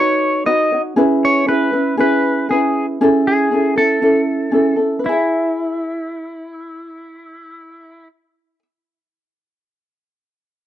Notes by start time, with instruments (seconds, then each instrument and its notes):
Already playing: ukulele D#4 F#4 B4 C#5, electric slide guitar C#5
0.46 ukulele D#4 F#4 B4 C#5, electric slide guitar D#5
0.72 ukulele D#4 F#4 C#5
0.96 ukulele C#4 E4 G#4 B4
1.25 electric slide guitar C#5
1.47 ukulele C#4 E4 G#4 B4, electric slide guitar B4
1.72 ukulele C#4 E4 B4
1.97 ukulele C#4 E4 G#4 B4, electric slide guitar B4
2.49 ukulele C#4 E4 G#4 B4, electric slide guitar G#4
3.01 ukulele C#4 E4 G#4 A4
3.27 electric slide guitar G#4
3.51 ukulele C#4 E4 G#4 A4
3.76 ukulele C#4 E4 A4, electric slide guitar A4
4.02 ukulele C#4 E4 A4
4.51 ukulele C#4 E4 G#4 A4
4.76 ukulele C#4 E4 A4
4.99 ukulele B4
5.04 ukulele E4, electric slide guitar E4
5.09 ukulele G#4 E5